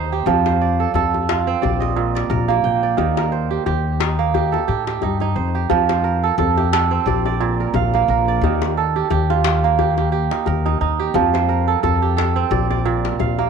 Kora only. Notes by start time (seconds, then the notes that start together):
Already playing: D#4 G4 A4 C5
0.12 G4
0.27 F3
0.46 C5
0.61 D5
0.80 A4
0.95 A4
1.29 F4
1.47 C4
1.62 D5
1.80 D#5
1.96 A#2
2.15 D5
2.30 A#4
2.48 A#3
2.64 G5
2.83 D5
2.97 D#3
3.17 A#4
3.32 C5
3.51 G4
3.66 G4
4.00 D#4
4.19 A#3
4.34 G4
4.52 A4
4.68 G4
4.87 G4
5.03 D#4
5.21 D#4
5.36 C5
5.55 G4
5.70 F3
5.89 C5
6.04 A#4
6.24 A4
6.39 A4
6.57 G4
6.73 A4
6.91 C4
7.07 D5
7.26 D5
7.40 A#2
7.60 A#4
7.76 F5
7.95 A#3
8.10 A#4
8.28 D5
8.44 D#3
8.77 A4
8.96 G4
9.11 G4
9.30 F4
9.46 G4
9.64 A#3
9.79 G4
9.98 G4
10.12 G4
10.31 D#4
10.47 A#4
10.66 D#4
10.81 D#4
10.99 G4
11.15 F3
11.34 C5
11.49 A#4
11.68 A4
11.83 A4
12.02 G4
12.17 A4
12.36 C4
12.51 D5
12.70 D5
12.85 A#2
13.20 F5
13.39 A#3